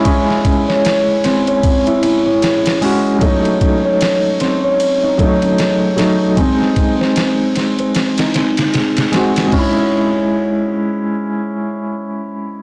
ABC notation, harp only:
X:1
M:4/4
L:1/16
Q:"Swing 16ths" 1/4=76
K:C#m
V:1 name="Harp"
C2 C c z2 ^B, c2 E C C G4 | C2 C c z2 ^B, c2 D C C G4 | ^B,2 B, ^B z2 B, B2 D B, B, G4 | C2 z12 z2 |]